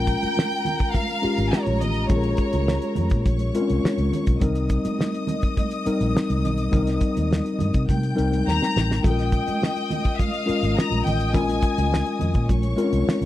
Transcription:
Already playing: A#1 G#3 C#4 F4 A#4 G5 A#5
0.07 kick, closed hi-hat
0.23 muted fingered electric bass stroke, closed hi-hat, high conga
0.37 snare, high conga
0.51 closed hi-hat, muted conga
0.65 closed hi-hat, high conga, low conga
0.79 kick, closed hi-hat
0.92 F5, kick, closed hi-hat, high conga
1.08 closed hi-hat, muted conga
1.22 G#3 C#4 F4 G4, muted fingered electric bass stroke, closed hi-hat
1.38 G#1, closed hi-hat, high conga
1.50 C#5, snare, muted conga
1.66 A#1, closed hi-hat, high conga
1.80 A1 D#5, closed hi-hat, low conga
1.94 closed hi-hat
2.08 A#1 G#3 C#4 F4 G#4 C#5, kick, closed hi-hat, muted conga, low conga
2.16 A#4
2.23 closed hi-hat, muted conga
2.37 kick, closed hi-hat
2.53 C#2, closed hi-hat, high conga
2.68 snare, muted conga, high conga
2.82 closed hi-hat, muted conga
2.95 F2, closed hi-hat, high conga, low conga
3.10 A#2, kick, closed hi-hat
3.25 A#1 C#5 C#6, kick, closed hi-hat, high conga
3.39 closed hi-hat, muted conga
3.54 G#3 C4 F4 A#4, closed hi-hat
3.61 C#4
3.69 C2, closed hi-hat, high conga
3.84 snare, muted conga
3.98 C#2, closed hi-hat, muted conga, high conga
4.13 closed hi-hat, low conga
4.27 B1, kick, closed hi-hat
4.40 C2 G3 C4 D#4 A#4 D#5 D#6, kick, closed hi-hat, muted conga, low conga
4.55 closed hi-hat
4.69 kick, closed hi-hat
4.85 muted fingered electric bass stroke, closed hi-hat, high conga
4.99 snare, muted conga, high conga
5.14 closed hi-hat, muted conga
5.27 closed hi-hat, high conga, low conga
5.42 kick, closed hi-hat
5.57 kick, closed hi-hat, muted conga, high conga
5.71 closed hi-hat
5.85 G3 C4 D#4 A#4, muted fingered electric bass stroke, closed hi-hat
6.00 A#1, closed hi-hat, high conga
6.17 snare
6.30 C2, closed hi-hat, muted conga, high conga
6.45 B1, closed hi-hat, low conga
6.58 closed hi-hat
6.71 C2 G3 C4 D#4 A#4, kick, closed hi-hat, low conga
6.86 snare, closed hi-hat, muted conga
7.01 kick, closed hi-hat
7.17 D#2, closed hi-hat, high conga
7.31 snare, muted conga, high conga
7.45 closed hi-hat, muted conga
7.59 G2, closed hi-hat, high conga, low conga
7.74 C3, kick, closed hi-hat
7.89 C3 G5 G6, kick, closed hi-hat, muted conga, high conga
8.03 closed hi-hat
8.15 C2 G3 C4 D#4 A#4, closed hi-hat
8.32 closed hi-hat, high conga
8.47 D#2 A#5, snare, muted conga
8.61 snare, high conga
8.76 A1, snare, low conga
8.91 snare
9.02 A#1 G#3 C#4 F4 A4 D#5 G5 D#6, kick, closed hi-hat, muted conga, low conga
9.10 A#4
9.19 snare, closed hi-hat
9.32 kick, closed hi-hat
9.48 muted fingered electric bass stroke, closed hi-hat, high conga
9.62 snare, high conga
9.76 closed hi-hat, muted conga
9.90 closed hi-hat, high conga, low conga
10.04 kick, closed hi-hat
10.14 E5
10.19 F5, kick, closed hi-hat, muted conga, high conga
10.33 closed hi-hat
10.46 G#3 C#4 F4 A#4, muted fingered electric bass stroke, closed hi-hat
10.63 G#1, closed hi-hat, high conga
10.77 A#5, snare, muted conga
10.91 A#1, closed hi-hat, muted conga, high conga
11.04 A1 G5, closed hi-hat, low conga
11.20 closed hi-hat
11.33 A#1 G#3 C#4 F4 A#4 G#5, kick, closed hi-hat, muted conga, low conga
11.48 closed hi-hat, muted conga
11.62 kick, closed hi-hat
11.78 C#2, closed hi-hat, high conga
11.92 snare, high conga
12.06 closed hi-hat, muted conga
12.20 F2, closed hi-hat, high conga, low conga
12.34 A#2, kick, closed hi-hat
12.49 A#1 C#5 C#6, kick, closed hi-hat, muted conga, high conga
12.63 closed hi-hat, muted conga
12.76 G#3 C4 F4 A#4, closed hi-hat
12.84 C#4
12.93 C2, closed hi-hat, high conga
13.07 muted fingered electric bass stroke, snare, muted conga
13.21 C#2, closed hi-hat, muted conga, high conga

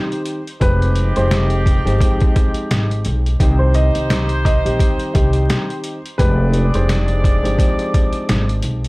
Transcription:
Already playing: D#3 G3 C4 D#4 G4 C5
0.12 closed hi-hat
0.26 closed hi-hat
0.47 closed hi-hat
0.60 F1 F3 G#3 C4 D#4 G4 B4, kick, closed hi-hat
0.82 closed hi-hat
0.95 closed hi-hat
1.16 F1 F3 G#3 C4 D#4 G4 C5, closed hi-hat
1.31 snare, closed hi-hat
1.50 closed hi-hat
1.66 kick, closed hi-hat
1.85 G1 F3 G#3 C4 D#4 G4, closed hi-hat
1.99 F3 G#3 C4 D#4 G4, kick, closed hi-hat
2.20 kick, closed hi-hat
2.36 kick, closed hi-hat
2.54 closed hi-hat
2.71 G#1, snare, closed hi-hat
2.91 closed hi-hat
3.05 B1, closed hi-hat
3.26 closed hi-hat
3.40 C2 D#3 G3 C4 D#4 G4 C5, kick, closed hi-hat
3.59 C5
3.74 D#5, closed hi-hat
3.95 C2, closed hi-hat
4.10 snare, closed hi-hat
4.29 closed hi-hat
4.45 D#5, kick, closed hi-hat
4.65 A#1 D#3 G3 C4 D#4 G4, closed hi-hat
4.80 kick, closed hi-hat
5.00 closed hi-hat
5.14 C2 D#3 G3 C4 D#4 G4, kick, closed hi-hat
5.33 closed hi-hat
5.50 snare, closed hi-hat
5.70 closed hi-hat
5.84 closed hi-hat
6.05 closed hi-hat
6.18 F1 F3 G#3 C4 D4 D#4 G4 G#4 B4 D5, kick, closed hi-hat
6.53 closed hi-hat
6.74 F1 F3 G#3 C4 D#4 G4 C5, closed hi-hat
6.89 snare, closed hi-hat
7.08 closed hi-hat
7.24 kick, closed hi-hat
7.42 G1 F3 G#3 C4 D#4 G4, closed hi-hat
7.57 F3 G#3 C4 D#4 G4, kick, closed hi-hat
7.79 closed hi-hat
7.94 kick, closed hi-hat
8.13 closed hi-hat
8.29 G#1, snare, closed hi-hat
8.49 closed hi-hat
8.62 B1, closed hi-hat
8.85 closed hi-hat

